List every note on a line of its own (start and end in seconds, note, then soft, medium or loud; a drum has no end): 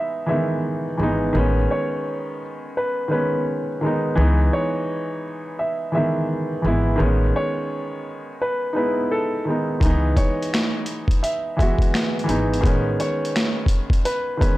0.00 0.27 E3 medium
0.00 0.28 G#3 medium
0.00 0.30 B3 medium
0.00 1.03 D#4 loud
0.00 0.25 E5 medium
0.27 0.85 E3 medium
0.27 0.86 G#3 medium
0.27 0.87 B3 medium
0.27 0.60 E5 medium
0.32 0.88 D#3 medium
0.98 1.30 G#1 medium
0.98 1.27 E3 medium
0.98 1.28 G#3 medium
0.98 1.29 B3 medium
1.03 1.30 D#4 medium
1.33 1.65 A1 medium
1.33 2.39 D#3 medium
1.33 2.40 G#3 medium
1.33 2.41 B3 medium
1.38 2.42 C#4 loud
1.71 2.76 C#5 medium
2.77 3.08 B4 medium
3.08 3.67 D#3 medium
3.08 3.68 G#3 medium
3.08 3.69 B3 medium
3.08 3.43 B4 medium
3.13 3.70 C#4 medium
3.81 4.10 D#3 medium
3.81 4.11 G#3 medium
3.81 4.12 B3 medium
3.86 4.13 D#4 medium
4.15 4.48 C#2 loud
4.15 5.22 E3 loud
4.15 5.23 G#3 medium
4.15 5.23 B3 medium
4.21 5.24 D#4 loud
4.53 5.54 C#5 medium
5.59 5.90 E5 medium
5.92 6.50 E3 medium
5.92 6.51 G#3 medium
5.92 6.52 B3 medium
5.92 6.26 E5 medium
5.97 6.53 D#3 medium
6.62 6.95 G#1 medium
6.62 6.92 E3 medium
6.62 6.93 G#3 medium
6.62 6.93 B3 medium
6.67 6.94 E4 medium
6.96 8.03 D#3 medium
6.96 8.04 G#3 medium
6.96 8.05 B3 medium
7.00 7.30 A1 loud
7.00 8.05 C#4 medium
7.36 8.37 C#5 medium
8.42 8.72 B4 medium
8.73 9.33 G#3 medium
8.73 9.34 B3 medium
8.73 9.32 D#4 medium
8.73 9.07 B4 medium
8.78 9.35 E4 medium
9.11 9.43 A4 medium
9.45 9.74 D#3 medium
9.45 9.75 G#3 medium
9.45 9.76 B3 medium
9.50 9.77 D#4 medium
9.80 10.12 C#2 medium
9.80 9.89 D#3 medium
9.80 10.87 G#3 medium
9.80 10.88 B3 medium
9.80 kick loud
9.80 closed hi-hat medium
9.85 10.89 E3 medium
9.85 10.89 D#4 loud
10.17 11.18 C#5 medium
10.17 kick medium
10.17 closed hi-hat medium
10.43 closed hi-hat soft
10.54 finger snap medium
10.54 snare loud
10.54 closed hi-hat medium
10.86 closed hi-hat medium
11.08 kick medium
11.08 closed hi-hat medium
11.23 11.54 E5 medium
11.23 closed hi-hat medium
11.57 12.15 E3 medium
11.57 12.16 G#3 medium
11.57 12.17 B3 medium
11.57 11.90 E5 medium
11.57 kick medium
11.57 closed hi-hat medium
11.62 12.18 F#4 medium
11.79 kick medium
11.79 closed hi-hat soft
11.94 finger snap medium
11.94 snare medium
11.94 closed hi-hat medium
12.19 closed hi-hat soft
12.24 12.55 E3 medium
12.24 12.56 G#3 medium
12.24 12.57 B3 medium
12.29 12.59 G#1 medium
12.29 12.58 D#4 medium
12.29 closed hi-hat medium
12.54 closed hi-hat soft
12.61 12.94 A1 medium
12.61 13.68 D#3 loud
12.61 13.69 G#3 medium
12.61 13.70 B3 medium
12.61 kick loud
12.65 13.70 C#4 loud
12.65 closed hi-hat medium
13.00 14.05 C#5 medium
13.00 closed hi-hat medium
13.25 closed hi-hat soft
13.36 finger snap medium
13.36 snare medium
13.36 closed hi-hat medium
13.66 kick medium
13.66 closed hi-hat medium
13.90 kick medium
13.90 closed hi-hat medium
14.05 14.37 B4 medium
14.05 closed hi-hat medium
14.37 14.58 D#3 medium
14.37 14.58 G#3 medium
14.37 14.58 B3 medium
14.37 14.58 B4 medium
14.41 14.58 C#4 medium
14.41 kick loud
14.41 closed hi-hat medium